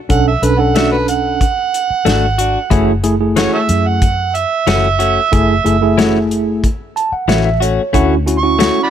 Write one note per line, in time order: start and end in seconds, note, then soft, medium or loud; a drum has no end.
0.09 0.35 B1 medium
0.09 0.31 C#4 medium
0.09 0.31 D4 medium
0.09 0.31 A4 medium
0.09 0.26 F#5 loud
0.09 kick loud
0.09 closed hi-hat medium
0.27 0.45 E5 medium
0.42 1.42 B1 medium
0.42 0.53 C#4 medium
0.42 0.53 D4 medium
0.42 0.53 A4 medium
0.42 0.61 B4 loud
0.42 closed hi-hat medium
0.58 1.42 C#4 medium
0.58 1.42 D4 medium
0.58 1.43 A4 medium
0.58 0.77 F#5 medium
0.76 0.95 A3 medium
0.76 0.96 D4 medium
0.76 0.96 F#4 medium
0.76 0.91 E5 medium
0.76 snare loud
0.76 closed hi-hat medium
0.92 1.07 B4 medium
1.08 3.01 F#5 loud
1.08 closed hi-hat medium
1.41 kick medium
1.41 closed hi-hat medium
1.74 closed hi-hat medium
1.90 muted fingered electric bass stroke soft
2.05 2.56 G#1 medium
2.05 2.25 A3 medium
2.05 2.26 D4 medium
2.05 2.26 F#4 medium
2.05 snare medium
2.05 closed hi-hat medium
2.38 2.59 D4 soft
2.38 2.58 F#4 medium
2.38 closed hi-hat medium
2.70 3.46 F#1 loud
2.70 2.91 E3 medium
2.70 2.92 A3 loud
2.70 2.91 A3 medium
2.70 2.91 C#4 medium
2.70 2.92 E4 medium
2.70 2.91 F#4 medium
2.70 2.92 G#4 loud
2.70 kick loud
2.70 closed hi-hat medium
3.04 3.14 A3 medium
3.04 3.14 E4 medium
3.04 3.14 G#4 medium
3.04 closed hi-hat medium
3.20 4.04 A3 medium
3.20 4.04 E4 medium
3.20 4.04 G#4 medium
3.36 3.56 E3 medium
3.36 3.57 A3 medium
3.36 3.57 C#4 medium
3.36 3.57 F#4 medium
3.36 3.52 C#5 loud
3.36 snare loud
3.36 closed hi-hat medium
3.53 3.62 A4 medium
3.53 3.61 C#5 medium
3.53 3.89 E5 medium
3.69 4.44 F#2 medium
3.69 closed hi-hat medium
3.87 4.37 F#5 medium
4.02 kick medium
4.02 closed hi-hat medium
4.35 6.27 E5 loud
4.35 closed hi-hat medium
4.67 5.17 F#1 medium
4.67 4.87 E3 medium
4.67 4.87 A3 medium
4.67 4.87 C#4 medium
4.67 4.88 F#4 medium
4.67 snare medium
4.67 closed hi-hat medium
4.99 5.20 A3 soft
4.99 5.20 C#4 soft
4.99 5.19 F#4 medium
4.99 closed hi-hat medium
5.32 5.58 F#1 loud
5.32 5.53 A3 loud
5.32 5.53 E4 medium
5.32 5.54 G#4 loud
5.32 kick loud
5.32 closed hi-hat medium
5.65 6.65 F#1 medium
5.65 5.76 A3 medium
5.65 5.76 E4 medium
5.65 5.76 G#4 medium
5.65 closed hi-hat medium
5.82 6.65 A3 medium
5.82 6.66 E4 medium
5.82 6.66 G#4 medium
5.98 6.18 E3 loud
5.98 6.18 A3 medium
5.98 6.18 C#4 loud
5.98 6.18 F#4 loud
5.98 snare loud
5.98 closed hi-hat medium
6.31 closed hi-hat medium
6.64 kick medium
6.64 closed hi-hat medium
6.96 7.11 A5 medium
6.96 closed hi-hat soft
7.12 7.28 F#5 medium
7.12 muted fingered electric bass stroke soft
7.28 7.78 A1 medium
7.28 7.48 E3 medium
7.28 7.49 A3 medium
7.28 7.49 C#4 medium
7.28 7.49 F#4 loud
7.28 7.44 E5 medium
7.28 snare loud
7.28 closed hi-hat medium
7.45 7.61 E5 medium
7.60 7.82 A3 soft
7.60 7.81 C#4 soft
7.60 7.81 F#4 medium
7.60 7.92 C#5 medium
7.60 closed hi-hat medium
7.93 8.69 D2 loud
7.93 8.13 A3 medium
7.93 8.15 C#4 medium
7.93 8.14 C#4 medium
7.93 8.15 E4 medium
7.93 8.14 F#4 medium
7.93 8.16 F#4 loud
7.93 kick loud
7.93 closed hi-hat medium
8.26 8.37 C#4 medium
8.26 8.38 E4 medium
8.26 8.37 F#4 medium
8.26 closed hi-hat medium
8.39 8.81 C#6 loud
8.43 8.90 C#4 medium
8.43 8.90 E4 medium
8.43 8.90 F#4 medium
8.59 8.79 A3 medium
8.59 8.80 C#4 medium
8.59 8.80 F#4 medium
8.59 snare loud
8.59 closed hi-hat medium
8.83 8.90 D5 medium
8.83 8.90 F#5 medium
8.83 8.90 B5 medium